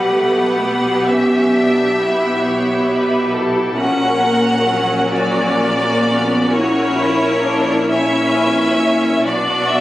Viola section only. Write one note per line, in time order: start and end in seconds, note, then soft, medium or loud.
0.00 0.12 G3 soft
0.00 3.79 G4 soft
0.13 0.58 A3 soft
0.60 3.79 B3 medium
3.78 4.22 C#4 soft
3.78 5.12 F#4 soft
4.22 4.68 A#3 soft
4.69 5.13 F#3 soft
5.14 5.59 F#3 soft
5.14 6.48 F#4 soft
5.61 6.06 A#3 medium
6.06 6.52 B3 medium
6.52 7.88 C#4 medium
6.52 9.24 E4 medium
7.89 9.21 C#4 medium
9.24 9.80 B3 medium
9.24 9.80 D4 medium